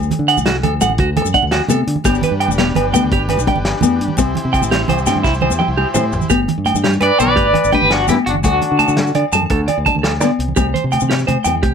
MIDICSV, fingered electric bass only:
0, 0, Header, 1, 2, 480
1, 0, Start_track
1, 0, Key_signature, 1, "major"
1, 0, Tempo, 354610
1, 2784, Time_signature, 12, 3, 24, 8
1, 15894, End_track
2, 0, Start_track
2, 0, Title_t, "Fingered electric bass"
2, 0, Program_c, 0, 33
2, 258, Note_on_c, 0, 50, 82
2, 480, Note_off_c, 0, 50, 0
2, 502, Note_on_c, 0, 36, 76
2, 831, Note_off_c, 0, 36, 0
2, 858, Note_on_c, 0, 38, 80
2, 1080, Note_off_c, 0, 38, 0
2, 1094, Note_on_c, 0, 33, 83
2, 1317, Note_off_c, 0, 33, 0
2, 1333, Note_on_c, 0, 38, 89
2, 1666, Note_off_c, 0, 38, 0
2, 1695, Note_on_c, 0, 42, 81
2, 1809, Note_off_c, 0, 42, 0
2, 1936, Note_on_c, 0, 38, 78
2, 2158, Note_off_c, 0, 38, 0
2, 2288, Note_on_c, 0, 48, 91
2, 2514, Note_off_c, 0, 48, 0
2, 2535, Note_on_c, 0, 50, 82
2, 2648, Note_off_c, 0, 50, 0
2, 2778, Note_on_c, 0, 31, 96
2, 2999, Note_off_c, 0, 31, 0
2, 3129, Note_on_c, 0, 43, 83
2, 3354, Note_off_c, 0, 43, 0
2, 3376, Note_on_c, 0, 28, 79
2, 3707, Note_off_c, 0, 28, 0
2, 3736, Note_on_c, 0, 31, 81
2, 3957, Note_off_c, 0, 31, 0
2, 3976, Note_on_c, 0, 38, 82
2, 4197, Note_off_c, 0, 38, 0
2, 4219, Note_on_c, 0, 31, 94
2, 4548, Note_off_c, 0, 31, 0
2, 4571, Note_on_c, 0, 35, 86
2, 4685, Note_off_c, 0, 35, 0
2, 4820, Note_on_c, 0, 31, 79
2, 5039, Note_off_c, 0, 31, 0
2, 5186, Note_on_c, 0, 40, 91
2, 5402, Note_off_c, 0, 40, 0
2, 5431, Note_on_c, 0, 43, 85
2, 5535, Note_off_c, 0, 43, 0
2, 5663, Note_on_c, 0, 36, 91
2, 5880, Note_off_c, 0, 36, 0
2, 6022, Note_on_c, 0, 48, 77
2, 6239, Note_off_c, 0, 48, 0
2, 6265, Note_on_c, 0, 33, 80
2, 6590, Note_off_c, 0, 33, 0
2, 6622, Note_on_c, 0, 36, 77
2, 6839, Note_off_c, 0, 36, 0
2, 6853, Note_on_c, 0, 43, 85
2, 7074, Note_off_c, 0, 43, 0
2, 7098, Note_on_c, 0, 36, 92
2, 7426, Note_off_c, 0, 36, 0
2, 7456, Note_on_c, 0, 40, 80
2, 7566, Note_off_c, 0, 40, 0
2, 7689, Note_on_c, 0, 36, 80
2, 7912, Note_off_c, 0, 36, 0
2, 8046, Note_on_c, 0, 45, 86
2, 8270, Note_off_c, 0, 45, 0
2, 8290, Note_on_c, 0, 33, 81
2, 8403, Note_off_c, 0, 33, 0
2, 8529, Note_on_c, 0, 31, 92
2, 8752, Note_off_c, 0, 31, 0
2, 8902, Note_on_c, 0, 43, 75
2, 9119, Note_off_c, 0, 43, 0
2, 9143, Note_on_c, 0, 43, 81
2, 9469, Note_off_c, 0, 43, 0
2, 9493, Note_on_c, 0, 43, 78
2, 9605, Note_off_c, 0, 43, 0
2, 9743, Note_on_c, 0, 35, 76
2, 9960, Note_off_c, 0, 35, 0
2, 9974, Note_on_c, 0, 31, 92
2, 10195, Note_off_c, 0, 31, 0
2, 10348, Note_on_c, 0, 31, 86
2, 10453, Note_off_c, 0, 31, 0
2, 10592, Note_on_c, 0, 31, 73
2, 10953, Note_on_c, 0, 43, 78
2, 10974, Note_off_c, 0, 31, 0
2, 11056, Note_off_c, 0, 43, 0
2, 11193, Note_on_c, 0, 30, 82
2, 11406, Note_off_c, 0, 30, 0
2, 11423, Note_on_c, 0, 38, 91
2, 11640, Note_off_c, 0, 38, 0
2, 11796, Note_on_c, 0, 50, 76
2, 12007, Note_off_c, 0, 50, 0
2, 12021, Note_on_c, 0, 50, 83
2, 12348, Note_off_c, 0, 50, 0
2, 12386, Note_on_c, 0, 50, 86
2, 12493, Note_off_c, 0, 50, 0
2, 12622, Note_on_c, 0, 42, 81
2, 12840, Note_off_c, 0, 42, 0
2, 12866, Note_on_c, 0, 38, 97
2, 13082, Note_off_c, 0, 38, 0
2, 13232, Note_on_c, 0, 38, 83
2, 13336, Note_off_c, 0, 38, 0
2, 13472, Note_on_c, 0, 38, 72
2, 13821, Note_off_c, 0, 38, 0
2, 13821, Note_on_c, 0, 50, 77
2, 13930, Note_off_c, 0, 50, 0
2, 14062, Note_on_c, 0, 36, 83
2, 14280, Note_off_c, 0, 36, 0
2, 14306, Note_on_c, 0, 36, 95
2, 14522, Note_off_c, 0, 36, 0
2, 14673, Note_on_c, 0, 48, 73
2, 14886, Note_off_c, 0, 48, 0
2, 14915, Note_on_c, 0, 48, 87
2, 15236, Note_off_c, 0, 48, 0
2, 15273, Note_on_c, 0, 48, 85
2, 15377, Note_off_c, 0, 48, 0
2, 15503, Note_on_c, 0, 40, 83
2, 15721, Note_off_c, 0, 40, 0
2, 15741, Note_on_c, 0, 36, 95
2, 15894, Note_off_c, 0, 36, 0
2, 15894, End_track
0, 0, End_of_file